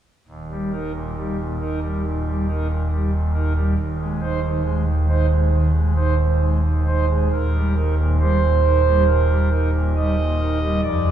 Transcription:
0.28 D#1 D#2
0.51 G3
0.72 D#4 A#4
0.94 A#2
1.17 G3
1.38 A#2
1.60 D#4 A#4
1.82 G3
2.05 A#2
2.26 G3
2.48 D#4 A#4
2.69 A#2
2.91 G3
3.13 A#2
3.33 D#4 A#4
3.55 G3
3.78 D#1 D#2
4.00 G#3
4.21 D#4 C5
4.43 D#3
4.64 G#3
4.86 D#3
5.08 D#4 C5
5.29 G#3
5.50 D#3
5.73 G#3
5.95 D#4 C5
6.18 D#3
6.40 G#3
6.63 D#3
6.86 D#4 C5
7.09 G#3
7.32 D#1 D#2 A#4
7.54 G3
7.76 D#4 A#4
7.98 A#2
8.19 G3 C5
8.41 A#2
8.62 D#4 A#4
8.84 G3
9.07 A#2 A#4
9.28 G3
9.51 D#4 A#4
9.74 A#2
9.96 G3 D#5
10.18 A#2
10.40 D#4 A#4
10.62 G3
10.83 F1 F2 D5
11.04 G#3

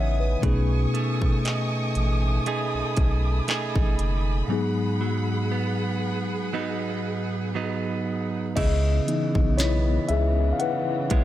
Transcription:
Already playing: A1 C#3 E3 B3 C#4 D#4 E4 G#4 B4 C#5 D#5 E5 F#5 G#5 D#6
0.20 B4
0.41 B1 B2 A3 C#4 D#4 C#6 D#6, kick, closed hi-hat
0.45 G#4
0.94 A3, closed hi-hat
1.22 kick
1.45 D#4, clap, closed hi-hat
1.95 A1, closed hi-hat
2.46 A3 D#4 G#4 B5, closed hi-hat
2.74 B1
2.97 B1, kick, closed hi-hat
3.48 A3 D#4 G#4, clap, closed hi-hat
3.76 A1, kick
3.99 F#1, closed hi-hat
4.48 G#2 F#3 B3 D#4 G#4 F#5
4.52 G#4
5.01 F#3
5.52 B3
6.53 F#3 B3 D#4
7.55 F#3 B3 D#4
8.56 C#2 C#3 E3 B3 E4 G#4 D#5, kick, closed hi-hat, crash
9.07 E3 B3 D#4, closed hi-hat
9.35 B1, kick
9.58 B3 E4 C#5, snare, closed hi-hat
10.09 C#2 G#4 E5, closed hi-hat
10.53 F5
10.59 C#4 B4 F#5, closed hi-hat
11.10 B1 G#3 B3 E4, kick, closed hi-hat

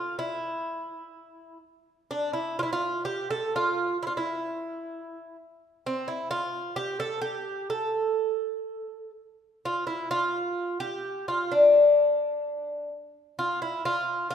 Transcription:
Already playing: F4
0.19 E4
2.11 D4
2.33 E4
2.59 E4 F4
2.73 F4
3.05 G4
3.31 A4
3.56 F4
4.03 E4
4.07 F4
4.17 E4
5.86 C4
6.08 E4
6.31 F4
6.76 G4
7.00 A4
7.22 G4
7.70 A4
9.65 F4
9.87 E4
10.11 F4
10.80 G4
11.28 F4
11.52 D4
13.39 F4
13.62 E4
13.85 F4
14.30 G4

